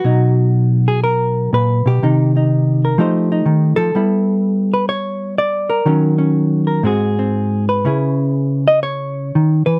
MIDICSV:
0, 0, Header, 1, 2, 480
1, 0, Start_track
1, 0, Key_signature, 5, "major"
1, 0, Tempo, 492611
1, 50, Time_signature, 4, 2, 24, 8
1, 2449, Tempo, 478851
1, 6289, Tempo, 499584
1, 9605, End_track
2, 0, Start_track
2, 0, Title_t, "Hollow-body jazz guitar"
2, 0, Program_c, 0, 26
2, 0, Note_on_c, 0, 66, 83
2, 42, Note_on_c, 0, 47, 59
2, 45, Note_on_c, 0, 54, 41
2, 55, Note_on_c, 0, 63, 39
2, 856, Note_on_c, 0, 68, 65
2, 1005, Note_off_c, 0, 68, 0
2, 1009, Note_on_c, 0, 70, 74
2, 1010, Note_off_c, 0, 66, 0
2, 1484, Note_off_c, 0, 47, 0
2, 1488, Note_on_c, 0, 46, 51
2, 1492, Note_off_c, 0, 70, 0
2, 1502, Note_on_c, 0, 71, 76
2, 1805, Note_off_c, 0, 46, 0
2, 1809, Note_on_c, 0, 47, 54
2, 1826, Note_on_c, 0, 67, 74
2, 1959, Note_off_c, 0, 63, 0
2, 1971, Note_off_c, 0, 47, 0
2, 1972, Note_off_c, 0, 54, 0
2, 1974, Note_on_c, 0, 48, 63
2, 1979, Note_off_c, 0, 71, 0
2, 1980, Note_on_c, 0, 51, 44
2, 1983, Note_on_c, 0, 63, 43
2, 2294, Note_off_c, 0, 63, 0
2, 2306, Note_on_c, 0, 63, 41
2, 2775, Note_off_c, 0, 67, 0
2, 2783, Note_on_c, 0, 70, 40
2, 2909, Note_off_c, 0, 48, 0
2, 2910, Note_off_c, 0, 51, 0
2, 2915, Note_off_c, 0, 63, 0
2, 2916, Note_off_c, 0, 70, 0
2, 2918, Note_on_c, 0, 53, 66
2, 2925, Note_on_c, 0, 57, 47
2, 2935, Note_on_c, 0, 63, 44
2, 2939, Note_on_c, 0, 67, 46
2, 2948, Note_on_c, 0, 72, 44
2, 3244, Note_off_c, 0, 63, 0
2, 3256, Note_on_c, 0, 63, 43
2, 3390, Note_off_c, 0, 53, 0
2, 3394, Note_on_c, 0, 51, 60
2, 3698, Note_off_c, 0, 67, 0
2, 3702, Note_on_c, 0, 69, 96
2, 3708, Note_off_c, 0, 51, 0
2, 3712, Note_on_c, 0, 53, 54
2, 3860, Note_off_c, 0, 57, 0
2, 3866, Note_off_c, 0, 63, 0
2, 3872, Note_off_c, 0, 72, 0
2, 3877, Note_off_c, 0, 53, 0
2, 3886, Note_on_c, 0, 59, 46
2, 3892, Note_on_c, 0, 55, 70
2, 3902, Note_on_c, 0, 64, 44
2, 4676, Note_on_c, 0, 71, 69
2, 4826, Note_off_c, 0, 71, 0
2, 4828, Note_off_c, 0, 69, 0
2, 4830, Note_on_c, 0, 73, 86
2, 5317, Note_off_c, 0, 73, 0
2, 5326, Note_on_c, 0, 74, 83
2, 5639, Note_on_c, 0, 70, 68
2, 5787, Note_off_c, 0, 59, 0
2, 5790, Note_off_c, 0, 55, 0
2, 5795, Note_off_c, 0, 64, 0
2, 5799, Note_on_c, 0, 51, 60
2, 5806, Note_off_c, 0, 74, 0
2, 5806, Note_on_c, 0, 54, 42
2, 5816, Note_on_c, 0, 61, 42
2, 6116, Note_off_c, 0, 61, 0
2, 6128, Note_on_c, 0, 61, 39
2, 6591, Note_off_c, 0, 70, 0
2, 6603, Note_on_c, 0, 70, 37
2, 6746, Note_off_c, 0, 70, 0
2, 6748, Note_off_c, 0, 51, 0
2, 6750, Note_off_c, 0, 61, 0
2, 6758, Note_on_c, 0, 44, 63
2, 6767, Note_off_c, 0, 54, 0
2, 6771, Note_on_c, 0, 56, 41
2, 6776, Note_on_c, 0, 60, 42
2, 6786, Note_on_c, 0, 66, 38
2, 6791, Note_on_c, 0, 68, 42
2, 7088, Note_off_c, 0, 60, 0
2, 7100, Note_on_c, 0, 60, 40
2, 7577, Note_off_c, 0, 68, 0
2, 7581, Note_on_c, 0, 71, 66
2, 7733, Note_on_c, 0, 49, 61
2, 7734, Note_off_c, 0, 56, 0
2, 7734, Note_off_c, 0, 60, 0
2, 7738, Note_on_c, 0, 61, 41
2, 7742, Note_off_c, 0, 66, 0
2, 7745, Note_on_c, 0, 64, 42
2, 7747, Note_off_c, 0, 44, 0
2, 7756, Note_on_c, 0, 68, 39
2, 8525, Note_off_c, 0, 71, 0
2, 8529, Note_on_c, 0, 75, 85
2, 8673, Note_off_c, 0, 75, 0
2, 8677, Note_on_c, 0, 73, 73
2, 9170, Note_off_c, 0, 49, 0
2, 9180, Note_on_c, 0, 51, 53
2, 9471, Note_off_c, 0, 68, 0
2, 9475, Note_on_c, 0, 71, 77
2, 9477, Note_off_c, 0, 51, 0
2, 9481, Note_on_c, 0, 52, 55
2, 9605, Note_off_c, 0, 52, 0
2, 9605, Note_off_c, 0, 61, 0
2, 9605, Note_off_c, 0, 64, 0
2, 9605, Note_off_c, 0, 71, 0
2, 9605, Note_off_c, 0, 73, 0
2, 9605, End_track
0, 0, End_of_file